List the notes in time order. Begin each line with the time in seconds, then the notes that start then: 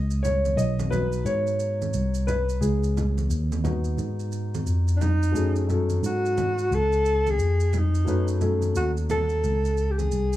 Already playing: C#2 D#5
0.11 maracas
0.23 C#5, low conga, maracas
0.45 high conga, maracas
0.56 B1 D#5, maracas
0.79 high conga, maracas
0.90 F#3 B3 D#4 B4, high conga, low conga, maracas
1.12 maracas
1.25 G#2 C#5, high conga, maracas
1.47 maracas
1.60 maracas
1.82 high conga, maracas
1.93 C2, maracas
2.14 maracas
2.27 B4, low conga, maracas
2.49 maracas
2.61 C#2 G#4, maracas
2.83 maracas
2.97 low conga, maracas
3.18 high conga, maracas
3.29 D#2, maracas
3.52 high conga, maracas
3.63 B3 D#4 F#4, high conga, low conga, maracas
3.84 maracas
3.97 G#2, high conga, maracas
4.20 maracas
4.32 maracas
4.55 high conga, maracas
4.66 F2, maracas
4.88 maracas
4.97 D4
5.01 D#4, low conga, maracas
5.23 maracas
5.32 F#2 F#3 A3 C#4 D#4 G#4, maracas
5.56 maracas
5.67 F#3 C#4 D#4 A4, low conga, maracas
5.90 high conga, maracas
6.02 G#2 F#4, maracas
6.26 maracas
6.38 high conga, low conga, maracas
6.58 maracas
6.70 C#2 A4, high conga, maracas
6.93 maracas
7.05 maracas
7.27 G#4, high conga, maracas
7.39 F2, maracas
7.60 maracas
7.73 low conga, maracas
7.78 D#4
7.95 maracas
8.05 F#2 F#3 A3 C#4 D#4 B4, maracas
8.28 maracas
8.40 F#3 A3 C#4 D#4 A4, low conga, maracas
8.62 high conga, maracas
8.75 D#2 F#4, maracas
8.97 maracas
9.10 A4, high conga, low conga, maracas
9.29 maracas
9.44 C#2, high conga, maracas
9.65 maracas
9.77 maracas
9.91 G4
9.98 G#4, high conga, maracas
10.12 C2, maracas
10.33 maracas